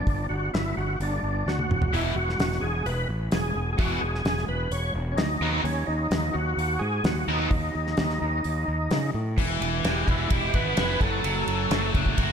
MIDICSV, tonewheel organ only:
0, 0, Header, 1, 2, 480
1, 0, Start_track
1, 0, Tempo, 466200
1, 73, Time_signature, 4, 2, 24, 8
1, 12686, End_track
2, 0, Start_track
2, 0, Title_t, "Tonewheel organ"
2, 0, Program_c, 0, 16
2, 0, Note_on_c, 0, 62, 107
2, 272, Note_off_c, 0, 62, 0
2, 299, Note_on_c, 0, 66, 90
2, 529, Note_off_c, 0, 66, 0
2, 551, Note_on_c, 0, 64, 79
2, 775, Note_off_c, 0, 64, 0
2, 794, Note_on_c, 0, 66, 85
2, 1017, Note_off_c, 0, 66, 0
2, 1050, Note_on_c, 0, 62, 84
2, 1521, Note_on_c, 0, 66, 85
2, 1535, Note_off_c, 0, 62, 0
2, 1983, Note_on_c, 0, 64, 96
2, 2010, Note_off_c, 0, 66, 0
2, 2093, Note_off_c, 0, 64, 0
2, 2224, Note_on_c, 0, 66, 114
2, 2687, Note_on_c, 0, 68, 92
2, 2721, Note_off_c, 0, 66, 0
2, 2945, Note_off_c, 0, 68, 0
2, 2945, Note_on_c, 0, 71, 96
2, 3170, Note_off_c, 0, 71, 0
2, 3419, Note_on_c, 0, 68, 79
2, 3813, Note_off_c, 0, 68, 0
2, 3836, Note_on_c, 0, 68, 65
2, 3884, Note_on_c, 0, 66, 88
2, 3901, Note_off_c, 0, 68, 0
2, 4128, Note_on_c, 0, 68, 90
2, 4142, Note_off_c, 0, 66, 0
2, 4581, Note_off_c, 0, 68, 0
2, 4617, Note_on_c, 0, 71, 86
2, 4855, Note_on_c, 0, 73, 91
2, 4867, Note_off_c, 0, 71, 0
2, 5082, Note_off_c, 0, 73, 0
2, 5269, Note_on_c, 0, 61, 67
2, 5326, Note_on_c, 0, 63, 82
2, 5342, Note_off_c, 0, 61, 0
2, 5779, Note_off_c, 0, 63, 0
2, 5810, Note_on_c, 0, 61, 88
2, 6042, Note_on_c, 0, 63, 95
2, 6062, Note_off_c, 0, 61, 0
2, 6522, Note_on_c, 0, 66, 99
2, 6545, Note_off_c, 0, 63, 0
2, 6994, Note_on_c, 0, 68, 97
2, 7024, Note_off_c, 0, 66, 0
2, 7253, Note_off_c, 0, 68, 0
2, 7265, Note_on_c, 0, 66, 96
2, 7485, Note_off_c, 0, 66, 0
2, 7492, Note_on_c, 0, 63, 89
2, 7712, Note_off_c, 0, 63, 0
2, 7725, Note_on_c, 0, 63, 90
2, 9372, Note_off_c, 0, 63, 0
2, 10142, Note_on_c, 0, 67, 79
2, 10360, Note_on_c, 0, 63, 65
2, 10375, Note_off_c, 0, 67, 0
2, 10387, Note_off_c, 0, 63, 0
2, 10407, Note_on_c, 0, 64, 89
2, 10627, Note_on_c, 0, 67, 88
2, 10629, Note_off_c, 0, 64, 0
2, 10859, Note_off_c, 0, 67, 0
2, 10859, Note_on_c, 0, 71, 86
2, 11329, Note_off_c, 0, 71, 0
2, 11335, Note_on_c, 0, 69, 88
2, 12276, Note_off_c, 0, 69, 0
2, 12686, End_track
0, 0, End_of_file